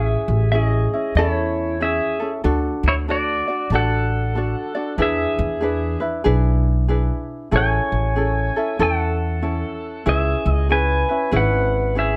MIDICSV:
0, 0, Header, 1, 4, 480
1, 0, Start_track
1, 0, Tempo, 636267
1, 1836, Time_signature, 4, 2, 24, 8
1, 9178, End_track
2, 0, Start_track
2, 0, Title_t, "Pedal steel guitar"
2, 0, Program_c, 0, 26
2, 0, Note_on_c, 0, 68, 69
2, 0, Note_on_c, 0, 76, 84
2, 376, Note_off_c, 0, 68, 0
2, 388, Note_off_c, 0, 76, 0
2, 391, Note_on_c, 0, 76, 80
2, 417, Note_on_c, 0, 68, 68
2, 474, Note_off_c, 0, 76, 0
2, 474, Note_on_c, 0, 75, 80
2, 856, Note_off_c, 0, 68, 0
2, 879, Note_off_c, 0, 75, 0
2, 882, Note_on_c, 0, 73, 81
2, 902, Note_on_c, 0, 64, 54
2, 1339, Note_off_c, 0, 64, 0
2, 1374, Note_off_c, 0, 73, 0
2, 1377, Note_on_c, 0, 76, 69
2, 1390, Note_on_c, 0, 68, 57
2, 1731, Note_off_c, 0, 76, 0
2, 1738, Note_off_c, 0, 68, 0
2, 2171, Note_on_c, 0, 64, 54
2, 2177, Note_on_c, 0, 73, 75
2, 2215, Note_off_c, 0, 64, 0
2, 2220, Note_off_c, 0, 73, 0
2, 2341, Note_on_c, 0, 66, 68
2, 2349, Note_on_c, 0, 74, 86
2, 2779, Note_off_c, 0, 66, 0
2, 2827, Note_off_c, 0, 74, 0
2, 2830, Note_on_c, 0, 69, 78
2, 2833, Note_on_c, 0, 78, 88
2, 3744, Note_off_c, 0, 69, 0
2, 3786, Note_off_c, 0, 78, 0
2, 3786, Note_on_c, 0, 68, 66
2, 3789, Note_on_c, 0, 76, 78
2, 4524, Note_off_c, 0, 68, 0
2, 4525, Note_off_c, 0, 76, 0
2, 5701, Note_on_c, 0, 73, 79
2, 5713, Note_on_c, 0, 80, 104
2, 6618, Note_off_c, 0, 73, 0
2, 6653, Note_on_c, 0, 69, 62
2, 6660, Note_on_c, 0, 78, 80
2, 6682, Note_off_c, 0, 80, 0
2, 7573, Note_off_c, 0, 69, 0
2, 7609, Note_off_c, 0, 78, 0
2, 7612, Note_on_c, 0, 76, 88
2, 7619, Note_on_c, 0, 68, 64
2, 7922, Note_off_c, 0, 76, 0
2, 7922, Note_on_c, 0, 75, 88
2, 8052, Note_off_c, 0, 75, 0
2, 8055, Note_off_c, 0, 68, 0
2, 8086, Note_on_c, 0, 80, 94
2, 8090, Note_on_c, 0, 71, 72
2, 8531, Note_off_c, 0, 71, 0
2, 8573, Note_off_c, 0, 80, 0
2, 8574, Note_on_c, 0, 78, 81
2, 8577, Note_on_c, 0, 71, 62
2, 9014, Note_off_c, 0, 71, 0
2, 9041, Note_off_c, 0, 78, 0
2, 9044, Note_on_c, 0, 76, 65
2, 9051, Note_on_c, 0, 68, 54
2, 9178, Note_off_c, 0, 68, 0
2, 9178, Note_off_c, 0, 76, 0
2, 9178, End_track
3, 0, Start_track
3, 0, Title_t, "Ukulele"
3, 0, Program_c, 1, 24
3, 0, Note_on_c, 1, 61, 68
3, 0, Note_on_c, 1, 64, 80
3, 0, Note_on_c, 1, 68, 77
3, 385, Note_off_c, 1, 68, 0
3, 391, Note_off_c, 1, 61, 0
3, 394, Note_on_c, 1, 68, 54
3, 395, Note_off_c, 1, 64, 0
3, 400, Note_on_c, 1, 61, 52
3, 410, Note_on_c, 1, 64, 66
3, 696, Note_off_c, 1, 64, 0
3, 697, Note_off_c, 1, 68, 0
3, 700, Note_off_c, 1, 61, 0
3, 705, Note_on_c, 1, 64, 47
3, 713, Note_on_c, 1, 61, 42
3, 879, Note_off_c, 1, 64, 0
3, 880, Note_off_c, 1, 61, 0
3, 886, Note_on_c, 1, 68, 75
3, 889, Note_on_c, 1, 61, 78
3, 891, Note_on_c, 1, 69, 87
3, 893, Note_on_c, 1, 64, 78
3, 1352, Note_off_c, 1, 68, 0
3, 1359, Note_off_c, 1, 61, 0
3, 1361, Note_off_c, 1, 64, 0
3, 1361, Note_on_c, 1, 68, 54
3, 1368, Note_on_c, 1, 61, 65
3, 1370, Note_on_c, 1, 64, 61
3, 1383, Note_off_c, 1, 69, 0
3, 1653, Note_off_c, 1, 64, 0
3, 1657, Note_on_c, 1, 69, 46
3, 1661, Note_off_c, 1, 68, 0
3, 1663, Note_on_c, 1, 64, 42
3, 1665, Note_off_c, 1, 61, 0
3, 1673, Note_on_c, 1, 61, 41
3, 1830, Note_off_c, 1, 69, 0
3, 1838, Note_off_c, 1, 64, 0
3, 1839, Note_off_c, 1, 61, 0
3, 1839, Note_on_c, 1, 69, 75
3, 1842, Note_on_c, 1, 62, 88
3, 1848, Note_on_c, 1, 66, 77
3, 2316, Note_off_c, 1, 69, 0
3, 2322, Note_off_c, 1, 66, 0
3, 2324, Note_off_c, 1, 62, 0
3, 2325, Note_on_c, 1, 69, 57
3, 2327, Note_on_c, 1, 62, 61
3, 2336, Note_on_c, 1, 66, 54
3, 2339, Note_on_c, 1, 74, 67
3, 2614, Note_off_c, 1, 74, 0
3, 2623, Note_off_c, 1, 66, 0
3, 2623, Note_on_c, 1, 74, 49
3, 2624, Note_off_c, 1, 69, 0
3, 2625, Note_off_c, 1, 62, 0
3, 2632, Note_on_c, 1, 66, 44
3, 2638, Note_on_c, 1, 62, 45
3, 2799, Note_off_c, 1, 74, 0
3, 2802, Note_off_c, 1, 62, 0
3, 2803, Note_off_c, 1, 66, 0
3, 2806, Note_on_c, 1, 69, 73
3, 2811, Note_on_c, 1, 62, 77
3, 2819, Note_on_c, 1, 66, 83
3, 2822, Note_on_c, 1, 74, 74
3, 3273, Note_off_c, 1, 69, 0
3, 3282, Note_on_c, 1, 69, 54
3, 3286, Note_off_c, 1, 62, 0
3, 3288, Note_off_c, 1, 66, 0
3, 3289, Note_on_c, 1, 62, 55
3, 3298, Note_off_c, 1, 74, 0
3, 3299, Note_on_c, 1, 66, 60
3, 3301, Note_on_c, 1, 74, 59
3, 3572, Note_off_c, 1, 74, 0
3, 3576, Note_off_c, 1, 66, 0
3, 3581, Note_on_c, 1, 74, 54
3, 3582, Note_off_c, 1, 69, 0
3, 3585, Note_on_c, 1, 66, 47
3, 3586, Note_off_c, 1, 62, 0
3, 3597, Note_on_c, 1, 62, 44
3, 3751, Note_off_c, 1, 62, 0
3, 3758, Note_off_c, 1, 74, 0
3, 3758, Note_on_c, 1, 68, 65
3, 3759, Note_off_c, 1, 66, 0
3, 3760, Note_on_c, 1, 62, 73
3, 3762, Note_on_c, 1, 64, 71
3, 3765, Note_on_c, 1, 71, 85
3, 4226, Note_off_c, 1, 68, 0
3, 4229, Note_on_c, 1, 68, 55
3, 4230, Note_off_c, 1, 62, 0
3, 4237, Note_off_c, 1, 71, 0
3, 4239, Note_off_c, 1, 64, 0
3, 4239, Note_on_c, 1, 62, 58
3, 4242, Note_on_c, 1, 64, 59
3, 4246, Note_on_c, 1, 71, 67
3, 4518, Note_off_c, 1, 71, 0
3, 4527, Note_on_c, 1, 71, 59
3, 4528, Note_off_c, 1, 64, 0
3, 4535, Note_off_c, 1, 62, 0
3, 4535, Note_off_c, 1, 68, 0
3, 4537, Note_on_c, 1, 64, 50
3, 4545, Note_on_c, 1, 62, 48
3, 4706, Note_off_c, 1, 64, 0
3, 4707, Note_off_c, 1, 62, 0
3, 4709, Note_on_c, 1, 68, 85
3, 4711, Note_off_c, 1, 71, 0
3, 4715, Note_on_c, 1, 64, 96
3, 4716, Note_on_c, 1, 62, 82
3, 4722, Note_on_c, 1, 71, 94
3, 5190, Note_off_c, 1, 62, 0
3, 5190, Note_off_c, 1, 68, 0
3, 5193, Note_on_c, 1, 68, 64
3, 5197, Note_off_c, 1, 64, 0
3, 5198, Note_off_c, 1, 71, 0
3, 5199, Note_on_c, 1, 62, 62
3, 5200, Note_on_c, 1, 64, 69
3, 5207, Note_on_c, 1, 71, 59
3, 5665, Note_off_c, 1, 68, 0
3, 5668, Note_on_c, 1, 68, 75
3, 5670, Note_off_c, 1, 62, 0
3, 5670, Note_off_c, 1, 64, 0
3, 5673, Note_on_c, 1, 61, 75
3, 5673, Note_on_c, 1, 64, 69
3, 5676, Note_off_c, 1, 71, 0
3, 5679, Note_on_c, 1, 69, 76
3, 6150, Note_off_c, 1, 68, 0
3, 6153, Note_on_c, 1, 68, 49
3, 6155, Note_off_c, 1, 61, 0
3, 6157, Note_off_c, 1, 69, 0
3, 6158, Note_on_c, 1, 61, 54
3, 6160, Note_off_c, 1, 64, 0
3, 6163, Note_on_c, 1, 64, 51
3, 6167, Note_on_c, 1, 69, 57
3, 6451, Note_off_c, 1, 69, 0
3, 6457, Note_off_c, 1, 68, 0
3, 6459, Note_off_c, 1, 61, 0
3, 6459, Note_off_c, 1, 64, 0
3, 6460, Note_on_c, 1, 69, 54
3, 6469, Note_on_c, 1, 64, 49
3, 6474, Note_on_c, 1, 61, 48
3, 6623, Note_off_c, 1, 61, 0
3, 6627, Note_off_c, 1, 64, 0
3, 6629, Note_off_c, 1, 69, 0
3, 6632, Note_on_c, 1, 61, 80
3, 6636, Note_on_c, 1, 64, 78
3, 6638, Note_on_c, 1, 69, 87
3, 7107, Note_off_c, 1, 61, 0
3, 7107, Note_off_c, 1, 64, 0
3, 7108, Note_off_c, 1, 69, 0
3, 7110, Note_on_c, 1, 61, 60
3, 7110, Note_on_c, 1, 64, 59
3, 7117, Note_on_c, 1, 69, 58
3, 7583, Note_off_c, 1, 61, 0
3, 7584, Note_off_c, 1, 64, 0
3, 7586, Note_on_c, 1, 61, 69
3, 7587, Note_on_c, 1, 64, 86
3, 7587, Note_on_c, 1, 68, 67
3, 7593, Note_off_c, 1, 69, 0
3, 7596, Note_on_c, 1, 71, 78
3, 8063, Note_off_c, 1, 68, 0
3, 8064, Note_off_c, 1, 61, 0
3, 8066, Note_on_c, 1, 68, 50
3, 8072, Note_off_c, 1, 64, 0
3, 8073, Note_on_c, 1, 61, 54
3, 8075, Note_on_c, 1, 64, 61
3, 8082, Note_off_c, 1, 71, 0
3, 8085, Note_on_c, 1, 71, 57
3, 8355, Note_off_c, 1, 71, 0
3, 8364, Note_on_c, 1, 71, 47
3, 8367, Note_off_c, 1, 64, 0
3, 8371, Note_off_c, 1, 61, 0
3, 8372, Note_off_c, 1, 68, 0
3, 8376, Note_on_c, 1, 64, 43
3, 8380, Note_on_c, 1, 61, 45
3, 8535, Note_off_c, 1, 61, 0
3, 8536, Note_on_c, 1, 68, 83
3, 8538, Note_off_c, 1, 64, 0
3, 8538, Note_off_c, 1, 71, 0
3, 8544, Note_on_c, 1, 61, 72
3, 8547, Note_on_c, 1, 71, 81
3, 8548, Note_on_c, 1, 64, 84
3, 9007, Note_off_c, 1, 68, 0
3, 9014, Note_off_c, 1, 61, 0
3, 9016, Note_on_c, 1, 68, 55
3, 9018, Note_off_c, 1, 64, 0
3, 9023, Note_on_c, 1, 61, 57
3, 9027, Note_on_c, 1, 64, 65
3, 9029, Note_off_c, 1, 71, 0
3, 9032, Note_on_c, 1, 71, 62
3, 9178, Note_off_c, 1, 61, 0
3, 9178, Note_off_c, 1, 64, 0
3, 9178, Note_off_c, 1, 68, 0
3, 9178, Note_off_c, 1, 71, 0
3, 9178, End_track
4, 0, Start_track
4, 0, Title_t, "Upright bass"
4, 0, Program_c, 2, 32
4, 0, Note_on_c, 2, 33, 84
4, 107, Note_off_c, 2, 33, 0
4, 211, Note_on_c, 2, 33, 86
4, 641, Note_off_c, 2, 33, 0
4, 868, Note_on_c, 2, 40, 81
4, 1495, Note_off_c, 2, 40, 0
4, 1843, Note_on_c, 2, 38, 86
4, 2037, Note_off_c, 2, 38, 0
4, 2137, Note_on_c, 2, 38, 86
4, 2565, Note_off_c, 2, 38, 0
4, 2791, Note_on_c, 2, 33, 84
4, 3418, Note_off_c, 2, 33, 0
4, 3756, Note_on_c, 2, 40, 80
4, 3953, Note_off_c, 2, 40, 0
4, 4063, Note_on_c, 2, 40, 86
4, 4489, Note_off_c, 2, 40, 0
4, 4721, Note_on_c, 2, 35, 80
4, 5344, Note_off_c, 2, 35, 0
4, 5673, Note_on_c, 2, 33, 82
4, 5871, Note_off_c, 2, 33, 0
4, 5974, Note_on_c, 2, 33, 77
4, 6403, Note_off_c, 2, 33, 0
4, 6634, Note_on_c, 2, 40, 83
4, 7257, Note_off_c, 2, 40, 0
4, 7592, Note_on_c, 2, 37, 86
4, 7789, Note_off_c, 2, 37, 0
4, 7888, Note_on_c, 2, 37, 80
4, 8317, Note_off_c, 2, 37, 0
4, 8542, Note_on_c, 2, 32, 86
4, 9169, Note_off_c, 2, 32, 0
4, 9178, End_track
0, 0, End_of_file